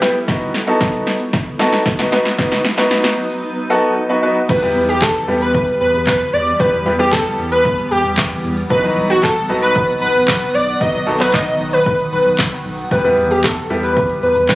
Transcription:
Already playing: ambient pad G3 B3 E4 A4
0.01 grand piano B3 E4 G4 B4, snare
0.28 ambient pad F#3 B3 D#4 B4, grand piano B3 D#4 F#4 B4, kick, snare
0.41 closed hi-hat
0.54 snare
0.67 grand piano B3 D#4 F#4 A4, closed hi-hat
0.81 kick, snare
0.94 closed hi-hat
1.07 snare
1.20 closed hi-hat
1.33 kick, snare
1.46 closed hi-hat
1.59 grand piano B3 D#4 F#4 A4, snare
1.72 snare, closed hi-hat
1.86 kick, snare
1.99 grand piano B3 D#4 F#4 B4, snare, closed hi-hat
2.12 grand piano B3 D#4 F#4 B4, snare
2.25 snare, closed hi-hat
2.38 grand piano B3 D#4 F#4 B4, kick, snare, shaker
2.52 snare, closed hi-hat, shaker
2.65 snare, open hi-hat, shaker
2.77 grand piano B3 D#4 F#4 B4, snare, closed hi-hat, shaker
2.91 snare, shaker
3.04 snare, closed hi-hat, shaker
3.17 open hi-hat, shaker
3.30 closed hi-hat, shaker
3.70 grand piano B3 D#4 F#4 A4 F#5
3.96 grand piano D#5
4.09 grand piano B3 D#4 F#4 B4
4.23 grand piano B3 D#4 F#4 B4
4.49 ambient pad E3 G3 B3 G4, grand piano G3 B3 E4 G4 B4, digital synth lead B4, kick, crash, shaker
4.62 sub bass E2, grand piano G3 B3 E4 G4 B4, closed hi-hat, shaker
4.75 sub bass E2, open hi-hat, shaker
4.89 digital synth lead G4, closed hi-hat, shaker
5.02 digital synth lead A4, kick, snare, clap, shaker
5.15 closed hi-hat, shaker
5.28 sub bass E2, grand piano G3 B3 E4 G4 B4, open hi-hat, shaker
5.41 digital synth lead B4, closed hi-hat, shaker
5.54 kick, shaker
5.67 closed hi-hat, shaker
5.81 sub bass E2, digital synth lead B4, open hi-hat, shaker
5.94 sub bass E2, closed hi-hat, shaker
6.07 digital synth lead B4, kick, snare, clap, shaker
6.21 closed hi-hat, shaker
6.33 sub bass E2, digital synth lead D5, open hi-hat, shaker
6.47 closed hi-hat, shaker
6.59 grand piano G3 B3 E4 G4 B4, digital synth lead B4, ambient pad F#5, kick, shaker
6.73 sub bass E2, closed hi-hat, shaker
6.86 sub bass E2, grand piano G3 B3 E4 G4 B4, open hi-hat, shaker
6.99 grand piano G3 B3 E4 G4 B4, digital synth lead G4, closed hi-hat, shaker
7.12 digital synth lead A4, kick, snare, clap, shaker
7.26 closed hi-hat, shaker
7.39 sub bass E2, open hi-hat, shaker
7.52 digital synth lead B4, closed hi-hat, shaker
7.65 kick, shaker
7.78 closed hi-hat, shaker
7.91 sub bass E2, digital synth lead G4, open hi-hat, shaker
8.04 sub bass E2, closed hi-hat, shaker
8.18 kick, snare, clap, shaker
8.31 closed hi-hat, shaker
8.44 sub bass E2, open hi-hat, shaker
8.57 closed hi-hat, shaker
8.70 ambient pad D#3 F#3, grand piano F#3 B3 D#4 F#4 B4, digital synth lead B4, kick, shaker
8.83 sub bass B1, grand piano F#3 B3 D#4 F#4 B4, closed hi-hat, shaker
8.97 sub bass B1, open hi-hat, shaker
9.10 digital synth lead F#4, closed hi-hat, shaker
9.23 digital synth lead A4, kick, snare, clap, shaker
9.36 closed hi-hat, shaker
9.49 sub bass B1, grand piano F#3 B3 D#4 F#4 B4, open hi-hat, shaker
9.62 digital synth lead B4, closed hi-hat, shaker
9.76 kick, shaker
9.89 closed hi-hat, shaker
10.01 sub bass B1, digital synth lead B4, open hi-hat, shaker
10.15 sub bass B1, closed hi-hat, shaker
10.28 digital synth lead B4, kick, snare, clap, shaker
10.42 closed hi-hat, shaker
10.54 sub bass B1, digital synth lead D5, open hi-hat, shaker
10.68 closed hi-hat, shaker
10.80 grand piano F#3 B3 D#4 F#4 B4, digital synth lead D#5, kick, shaker
10.94 sub bass B1, closed hi-hat, shaker
11.06 sub bass B1, grand piano F#3 B3 D#4 F#4 A4, open hi-hat, shaker
11.20 grand piano F#3 B3 D#4 F#4 B4, digital synth lead B4, clap, closed hi-hat, shaker
11.34 digital synth lead D#5, kick, snare, clap, shaker
11.47 closed hi-hat, shaker
11.60 sub bass B1, open hi-hat, shaker
11.73 digital synth lead B4, closed hi-hat, shaker
11.86 kick, shaker
11.99 closed hi-hat, shaker
12.13 sub bass B1, digital synth lead B4, open hi-hat, shaker
12.26 sub bass B1, closed hi-hat, shaker
12.38 kick, snare, clap, shaker
12.52 closed hi-hat, shaker
12.65 sub bass B1, open hi-hat, shaker
12.78 closed hi-hat, shaker
12.91 ambient pad E3 G3 B3 G4, grand piano G3 B3 E4 G4 B4, digital synth lead B4, kick, shaker
13.04 sub bass E2, grand piano G3 B3 E4 G4 B4, closed hi-hat, shaker
13.18 sub bass E2, open hi-hat, shaker
13.31 digital synth lead G4, closed hi-hat, shaker
13.44 digital synth lead A4, kick, snare, clap, shaker
13.57 closed hi-hat, shaker
13.70 sub bass E2, grand piano G3 B3 E4 G4 B4, open hi-hat, shaker
13.83 digital synth lead B4, closed hi-hat, shaker
13.96 kick, shaker
14.10 closed hi-hat, shaker
14.23 sub bass E2, digital synth lead B4, open hi-hat, shaker
14.36 sub bass E2, closed hi-hat, shaker
14.49 digital synth lead B4, kick, snare, clap, shaker

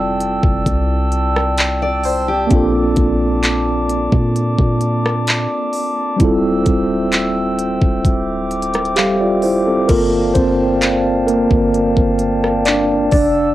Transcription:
Already playing: 808-style bass F1, tine electric piano G3 C4 E4 F4 A4, glass harmonica D5 G5 A5 E6
0.21 closed hi-hat
0.43 808-style bass F1, kick
0.66 808-style bass C2, kick, closed hi-hat
1.12 closed hi-hat
1.36 cross-stick
1.58 clap, closed hi-hat
1.82 steel-string acoustic guitar D5
2.04 steel-string acoustic guitar C5, open hi-hat
2.28 steel-string acoustic guitar G4
2.47 tine electric piano A#3 C4, glass harmonica A#3 A5 D6, kick, closed hi-hat
2.51 808-style bass A#1, tine electric piano D4 F4
2.55 tine electric piano A4
2.96 808-style bass A#1, kick, closed hi-hat
3.43 clap, closed hi-hat
3.89 closed hi-hat
4.12 808-style bass A#2, kick
4.36 closed hi-hat
4.58 808-style bass A#2, kick
4.81 closed hi-hat
5.06 cross-stick
5.27 clap, closed hi-hat
5.73 open hi-hat
6.16 808-style bass D1, tine electric piano G3 C4 E4, glass harmonica C5 E5 G5 E6, kick, closed hi-hat
6.22 tine electric piano F4 A4
6.66 808-style bass D1, kick, closed hi-hat
7.12 clap, closed hi-hat
7.59 closed hi-hat
7.82 808-style bass D1, kick
8.05 808-style bass D1, glass harmonica D6, kick, closed hi-hat
8.51 closed hi-hat
8.62 closed hi-hat
8.74 cross-stick, closed hi-hat
8.85 closed hi-hat
8.96 tine electric piano G3 G4 A4 F5, clap, closed hi-hat
9.21 tine electric piano F4 D5
9.42 tine electric piano E4 C5, open hi-hat
9.67 tine electric piano C4 A4
9.88 808-style bass G1, tine electric piano A#3 F4 A4 A#4, glass harmonica D5 F5 G5 A5, kick, closed hi-hat, crash
10.34 808-style bass G1, tine electric piano C4 C5, kick, closed hi-hat
10.82 clap, closed hi-hat
11.27 tine electric piano A#3 A#4, closed hi-hat
11.51 808-style bass G1, kick
11.74 closed hi-hat
11.97 808-style bass G1, kick
12.19 closed hi-hat
12.44 cross-stick
12.65 tine electric piano D4 D5, clap, closed hi-hat
13.11 808-style bass F1, tine electric piano D4 D5, glass harmonica E6, kick, open hi-hat

